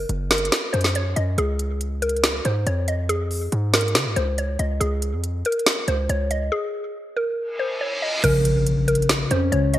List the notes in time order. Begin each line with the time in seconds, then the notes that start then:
0.09 F#1, closed hi-hat
0.31 A#4, snare, closed hi-hat
0.38 closed hi-hat
0.45 closed hi-hat
0.52 snare, closed hi-hat
0.73 F#2 C5, closed hi-hat
0.81 snare, closed hi-hat
0.88 closed hi-hat
0.95 C#5, closed hi-hat
1.16 F#2 D#5, closed hi-hat
1.38 C#2 G#4, closed hi-hat
1.59 closed hi-hat
1.81 closed hi-hat
2.02 A#4, closed hi-hat
2.09 closed hi-hat
2.17 closed hi-hat
2.24 snare, closed hi-hat
2.45 G#2 C5, closed hi-hat
2.67 F2 C#5, closed hi-hat
2.88 D#5, closed hi-hat
3.09 G#4, closed hi-hat
3.31 open hi-hat
3.52 G#2, closed hi-hat
3.74 A#4, snare, closed hi-hat
3.81 closed hi-hat
3.88 closed hi-hat
3.95 C#3, snare, closed hi-hat
4.06 G#2
4.16 C#2 C5, closed hi-hat
4.38 C#5, closed hi-hat
4.59 C#2 D#5, closed hi-hat
4.80 C#2 G#4, closed hi-hat
5.02 closed hi-hat
5.13 F2
5.24 closed hi-hat
5.45 A#4, closed hi-hat
5.52 closed hi-hat
5.59 closed hi-hat
5.66 snare, closed hi-hat
5.88 C#2 C5, closed hi-hat
6.09 C#2 C#5, closed hi-hat
6.31 D#5, closed hi-hat
6.52 G#4
7.17 A#4
7.38 reverse cymbal
7.59 C5
7.81 C#5
8.02 D#5
8.23 A#1 C#3 A#4, closed hi-hat, crash, impact
8.45 closed hi-hat
8.67 closed hi-hat
8.88 A#4, closed hi-hat
8.95 closed hi-hat
9.02 closed hi-hat
9.09 snare, closed hi-hat
9.31 F2 C#4 C5, closed hi-hat
9.52 C#2 C#3 C#5, closed hi-hat
9.73 C#5 D#5, closed hi-hat